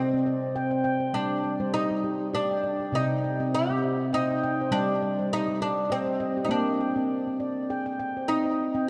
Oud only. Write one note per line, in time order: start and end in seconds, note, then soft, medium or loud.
0.00 0.81 C4 medium
1.14 1.73 D4 medium
1.74 2.29 D#4 medium
2.35 2.95 D4 medium
2.95 3.54 D#4 medium
3.54 4.14 G4 medium
4.14 4.71 D#4 medium
4.72 5.33 D4 medium
5.33 5.61 D#4 medium
5.62 5.92 D4 medium
5.92 6.46 C4 medium
6.45 6.50 D#4 medium
6.51 7.95 D4 medium
8.28 8.88 D#4 medium